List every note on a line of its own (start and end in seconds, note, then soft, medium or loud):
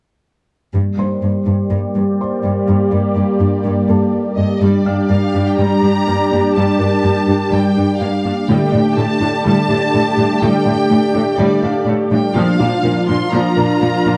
0.74 0.82 G2 soft
0.74 0.89 G3 medium
0.74 4.58 G3 medium
0.74 4.58 A#3 medium
0.74 4.59 G4 medium
0.74 4.58 D5 medium
0.98 1.06 G2 soft
0.98 1.13 A#3 soft
0.98 2.20 C5 soft
0.98 2.19 C6 soft
1.23 1.31 G2 soft
1.23 1.37 A#3 soft
1.47 1.55 G2 soft
1.47 1.62 D4 soft
1.71 1.79 G2 soft
1.71 1.86 G3 medium
1.95 2.03 G2 soft
1.95 2.10 A#3 soft
2.21 3.61 C5 soft
2.21 3.61 C6 soft
2.44 2.52 G2 soft
2.44 2.58 A#3 soft
2.68 2.76 G2 soft
2.68 2.83 G3 medium
2.92 3.00 G2 soft
3.16 3.24 G2 soft
3.16 3.31 A#3 medium
3.40 3.48 G2 soft
3.40 3.55 D4 soft
3.65 3.73 G2 soft
3.65 3.80 G3 medium
3.89 3.97 G2 soft
3.89 4.04 A#3 soft
3.89 4.58 A4 soft
3.89 4.58 A5 soft
4.37 4.45 G2 soft
4.37 4.52 A#3 medium
4.37 4.60 D#5 soft
4.60 4.69 G2 medium
4.60 8.44 G3 medium
4.60 4.84 G3 soft
4.60 4.76 G3 medium
4.60 8.44 D4 medium
4.60 8.44 G4 medium
4.60 8.45 G4 soft
4.60 5.10 D5 soft
4.60 8.45 D5 medium
4.85 4.94 G2 soft
4.85 4.93 D4 soft
4.85 5.01 D4 soft
4.85 6.27 F5 soft
4.85 6.27 F6 soft
5.10 5.18 G2 soft
5.10 5.18 A#3 soft
5.10 5.25 G4 soft
5.10 5.46 F5 medium
5.35 5.43 G2 soft
5.35 5.43 D4 soft
5.35 5.49 D4 soft
5.47 5.59 G5 soft
5.58 5.67 G2 soft
5.58 5.81 G3 soft
5.58 5.73 G3 medium
5.58 6.55 A#5 medium
5.83 5.91 G2 soft
5.83 5.91 D4 soft
5.83 5.97 G4 soft
6.07 6.15 G2 soft
6.07 6.15 A#3 soft
6.07 6.22 G4 soft
6.31 6.39 G2 soft
6.31 6.46 A#3 soft
6.31 6.39 D4 soft
6.55 6.64 G2 soft
6.55 6.70 G3 medium
6.55 6.78 G3 medium
6.55 7.50 A5 medium
6.79 6.88 G2 soft
6.79 6.88 D4 soft
6.79 6.94 D4 medium
6.79 8.20 A#4 soft
7.04 7.12 G2 soft
7.04 7.13 A#3 soft
7.04 7.18 G4 soft
7.28 7.36 G2 soft
7.28 7.42 D4 soft
7.28 7.37 D4 soft
7.52 7.60 G2 medium
7.52 7.75 G3 soft
7.52 7.67 G3 medium
7.52 8.00 G5 medium
7.76 7.85 G2 soft
7.76 7.84 D4 soft
7.76 7.91 G4 soft
8.00 8.09 G2 soft
8.00 8.09 A#3 soft
8.00 8.15 G4 soft
8.00 8.49 F5 medium
8.25 8.33 G2 soft
8.25 8.39 A#3 medium
8.25 8.33 D4 soft
8.48 8.57 A2 medium
8.48 8.63 D3 medium
8.48 8.72 G3 medium
8.48 12.36 A3 medium
8.48 12.32 D4 medium
8.48 12.32 G4 medium
8.48 12.33 G4 soft
8.48 12.33 D5 medium
8.48 8.97 G5 medium
8.72 8.81 A2 soft
8.72 8.87 A3 medium
8.72 8.81 D4 soft
8.72 10.13 D5 soft
8.97 9.05 A2 soft
8.97 9.05 A3 soft
8.97 9.11 D4 soft
8.97 9.45 A5 medium
9.21 9.29 A2 soft
9.21 9.36 A3 soft
9.21 9.29 D4 soft
9.45 9.54 A2 soft
9.45 9.60 D3 medium
9.45 9.67 G3 medium
9.45 10.41 A5 medium
9.69 9.78 A2 soft
9.69 9.77 D4 soft
9.69 9.84 D4 medium
9.93 10.02 A2 soft
9.93 10.01 A3 soft
9.93 10.08 D4 soft
10.18 10.26 A2 soft
10.18 10.33 G3 soft
10.18 10.26 D4 soft
10.42 10.51 A2 medium
10.42 10.57 D3 medium
10.42 10.65 G3 medium
10.42 11.39 G5 medium
10.66 10.74 A2 soft
10.66 10.81 A3 soft
10.66 10.76 D4 soft
10.90 10.98 A2 soft
10.90 10.99 A3 soft
10.90 11.05 D4 medium
11.14 11.22 A2 soft
11.14 11.29 A3 soft
11.14 11.23 D4 soft
11.38 11.46 A2 medium
11.38 11.53 D3 medium
11.38 11.62 G3 medium
11.38 11.88 D5 medium
11.63 11.71 A2 soft
11.63 11.77 D4 medium
11.63 11.72 D4 soft
11.63 12.57 F5 medium
11.87 11.95 A2 soft
11.87 11.96 A3 medium
11.87 12.02 D4 soft
12.11 12.19 A2 soft
12.11 12.26 G3 soft
12.11 12.19 D4 soft
12.11 12.34 G5 medium
12.34 12.44 A#2 medium
12.34 14.17 F3 medium
12.34 12.58 F3 medium
12.34 12.50 A#3 medium
12.34 14.17 D4 medium
12.34 14.17 F4 medium
12.34 14.17 F5 medium
12.34 13.09 F5 medium
12.59 12.68 A#2 soft
12.59 12.68 D4 soft
12.59 14.01 F4 soft
12.59 12.75 F4 medium
12.59 14.01 F5 soft
12.84 12.92 A#2 soft
12.84 12.92 A#3 soft
12.84 12.99 A#4 medium
13.08 13.17 A#2 soft
13.08 13.16 D4 soft
13.08 13.23 F4 soft
13.08 13.32 C6 medium
13.32 13.41 A#2 medium
13.32 13.55 F3 medium
13.32 13.47 A#3 medium
13.32 14.17 A#5 medium
13.56 13.65 A#2 soft
13.56 14.17 D4 soft
13.56 13.65 D4 soft
13.56 13.71 A#4 medium
13.56 14.17 D5 soft
13.80 13.89 A#2 soft
13.80 13.89 A#3 soft
13.80 13.95 A#4 soft
14.04 14.13 A#2 soft
14.04 14.17 D4 medium
14.04 14.14 D4 soft